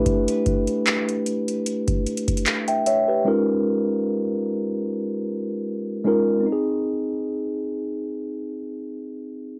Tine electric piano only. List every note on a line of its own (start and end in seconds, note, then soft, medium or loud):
0.00 0.94 A3 medium
0.00 0.98 D4 medium
0.00 0.95 E4 medium
0.00 0.95 G4 medium
0.00 0.96 B4 loud
2.68 2.85 E5 soft
2.68 2.85 G5 medium
2.87 3.07 C#5 medium
2.87 3.07 E5 medium
3.08 3.46 G4 soft
3.08 3.46 B4 medium
3.25 4.25 G#3 medium
3.25 4.25 C#4 medium
3.25 4.26 D#4 medium
3.25 4.26 F4 medium
3.25 4.26 A#4 medium
6.04 6.31 G#3 medium
6.04 6.31 C#4 medium
6.04 6.32 D#4 medium
6.04 6.32 F4 medium
6.04 6.32 A#4 medium
6.40 9.59 C4 medium
6.46 9.59 D#4 medium
6.52 9.59 G#4 medium